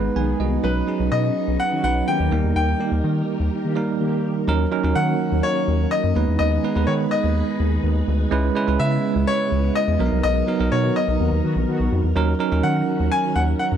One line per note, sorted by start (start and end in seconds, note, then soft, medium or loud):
0.00 0.62 G#3 medium
0.00 0.66 G#3 medium
0.00 0.66 B3 medium
0.00 2.28 B3 medium
0.00 0.64 D#4 medium
0.00 4.44 D#4 medium
0.00 0.17 B4 medium
0.16 0.34 B1 loud
0.16 0.50 D#3 loud
0.16 0.50 B3 loud
0.16 0.50 G#4 loud
0.16 0.39 B4 medium
0.16 0.39 G#5 medium
0.40 0.58 C2 medium
0.40 0.86 F#4 medium
0.40 0.86 D#5 medium
0.63 0.82 B1 loud
0.63 0.81 F#3 medium
0.63 0.81 C#4 medium
0.63 2.30 C#4 medium
0.63 0.81 D#4 medium
0.63 1.13 B4 medium
0.63 0.82 B4 medium
0.87 1.57 F#3 medium
0.87 1.57 C#4 medium
0.87 1.57 D#4 medium
0.87 1.57 G#4 medium
1.00 1.09 B1 medium
1.12 1.30 B2 loud
1.12 1.61 D#5 medium
1.48 1.57 B1 medium
1.60 1.82 F#5 loud
1.72 1.82 D#3 medium
1.72 1.82 C#4 medium
1.72 1.82 F#4 loud
1.83 2.02 B1 medium
1.83 2.32 F#3 medium
1.83 2.32 C#4 medium
1.83 2.31 D#4 medium
1.83 2.32 B4 medium
1.83 2.09 F#5 loud
2.08 2.42 D#3 loud
2.08 2.42 A#3 medium
2.08 2.42 G4 loud
2.08 2.55 G5 loud
2.20 2.29 D#2 medium
2.31 2.41 D#2 loud
2.31 4.46 D#3 medium
2.31 2.70 G3 medium
2.31 2.70 A#3 medium
2.31 2.70 D#4 medium
2.31 4.46 G4 medium
2.31 4.46 A#4 medium
2.31 2.71 A#4 medium
2.44 2.53 E2 medium
2.56 2.74 D#2 loud
2.56 3.96 G5 medium
2.79 3.49 G3 medium
2.79 3.49 A#3 medium
2.79 3.49 D#4 medium
2.79 3.49 G4 medium
2.92 3.01 D#2 medium
3.04 3.22 D#3 loud
3.40 3.49 D#2 medium
3.64 3.74 D#3 medium
3.64 3.74 A#3 medium
3.64 3.74 G4 loud
3.75 4.28 G3 medium
3.75 4.28 A#3 medium
3.75 4.28 D#4 medium
3.75 4.28 A#4 medium
4.00 4.34 D#3 loud
4.00 4.34 A#3 loud
4.00 4.34 G4 loud
4.48 4.66 D#2 loud
4.48 8.28 D#3 medium
4.48 4.65 F#3 medium
4.48 6.14 A#3 medium
4.48 4.65 C#4 medium
4.48 6.14 C#4 medium
4.48 4.65 D#4 medium
4.48 6.14 F#4 medium
4.48 4.66 A#4 loud
4.71 4.80 F#3 medium
4.71 4.80 C#4 medium
4.71 4.81 D#4 medium
4.71 4.81 A#4 medium
4.83 4.93 D#2 medium
4.83 5.53 F#3 medium
4.83 5.53 C#4 medium
4.83 5.53 D#4 medium
4.83 5.53 A#4 medium
4.95 5.14 D#3 loud
4.95 5.45 F#5 loud
5.32 5.41 D#2 medium
5.43 5.93 C#5 medium
5.68 5.86 D#2 medium
5.91 6.37 D#5 medium
6.04 6.13 F#2 medium
6.15 6.25 D#2 loud
6.15 6.54 G#3 medium
6.15 6.54 B3 medium
6.15 8.30 D#4 medium
6.15 6.54 D#4 medium
6.15 8.30 G#4 medium
6.15 8.30 B4 medium
6.15 6.55 B4 medium
6.28 6.37 E2 medium
6.39 6.58 D#2 loud
6.39 6.89 D#5 medium
6.63 6.72 G#3 medium
6.63 6.73 B3 medium
6.63 6.73 D#4 medium
6.63 6.73 B4 medium
6.75 6.85 D#2 medium
6.75 7.45 G#3 medium
6.75 7.45 B3 medium
6.75 7.45 D#4 medium
6.75 7.45 B4 medium
6.87 7.06 D#3 loud
6.87 6.92 C#5 medium
7.11 8.04 D#5 medium
7.24 7.42 D#2 medium
7.60 7.78 D#2 medium
7.84 8.02 D#2 loud
8.08 8.26 D2 loud
8.31 8.50 C#2 loud
8.31 9.98 C#3 medium
8.31 8.49 G#3 medium
8.31 9.98 G#3 medium
8.31 12.12 B3 medium
8.31 8.49 C#4 medium
8.31 9.98 E4 medium
8.31 8.49 E4 medium
8.31 8.49 B4 loud
8.55 8.64 G#3 medium
8.55 8.64 C#4 medium
8.55 8.65 E4 medium
8.55 8.65 B4 medium
8.67 8.77 C#2 medium
8.67 9.37 G#3 medium
8.67 9.37 C#4 medium
8.67 9.37 E4 medium
8.67 9.37 B4 medium
8.79 8.98 C#3 loud
8.79 9.29 E5 loud
9.16 9.25 C#2 medium
9.27 9.77 C#5 loud
9.52 9.70 C#2 medium
9.75 10.22 D#5 medium
9.88 9.97 E2 medium
9.99 10.09 B1 loud
9.99 10.38 F#3 medium
9.99 10.38 B3 medium
9.99 10.06 D4 medium
9.99 12.14 D#4 medium
9.99 13.77 A#4 medium
9.99 10.39 A#4 medium
10.06 10.41 D#4 medium
10.12 10.21 C2 loud
10.23 10.42 B1 loud
10.23 10.73 D#5 loud
10.47 10.56 F#3 medium
10.47 10.56 B3 medium
10.47 10.57 D#4 medium
10.47 10.57 A#4 medium
10.59 10.69 B1 medium
10.59 11.29 F#3 medium
10.59 11.29 B3 medium
10.59 11.29 D#4 medium
10.59 11.29 A#4 medium
10.72 10.90 B2 loud
10.72 10.94 C#5 medium
10.84 10.94 D#3 medium
10.84 10.94 B3 medium
10.84 10.94 F#4 medium
10.96 11.88 D#5 medium
11.08 11.17 B1 loud
11.20 11.29 D#2 medium
11.20 11.30 D#3 medium
11.20 11.30 B3 medium
11.20 11.30 F#4 medium
11.32 11.41 D#2 medium
11.44 11.54 D#3 loud
11.44 11.54 B3 loud
11.44 11.54 F#4 loud
11.56 11.65 A#1 medium
11.68 12.02 D#3 loud
11.68 12.02 B3 medium
11.68 12.02 F#4 loud
11.80 11.89 B1 medium
11.92 12.01 F2 medium
12.04 12.13 E2 medium
12.15 12.34 D#2 loud
12.15 13.77 D#3 medium
12.15 12.33 F#3 medium
12.15 12.33 C#4 medium
12.15 13.77 C#4 medium
12.15 12.33 D#4 medium
12.15 13.77 F#4 medium
12.15 12.34 A#4 loud
12.39 12.48 F#3 medium
12.39 12.48 C#4 medium
12.39 12.49 D#4 medium
12.39 12.49 A#4 medium
12.51 12.61 D#2 medium
12.51 13.21 F#3 medium
12.51 13.21 C#4 medium
12.51 13.21 D#4 medium
12.51 13.21 A#4 medium
12.63 12.82 D#3 medium
12.63 13.13 F#5 medium
13.00 13.09 D#2 medium
13.12 13.36 G#5 loud
13.36 13.54 D#2 medium
13.36 13.41 F#5 loud
13.59 13.65 F#5 medium
13.72 13.77 F#2 medium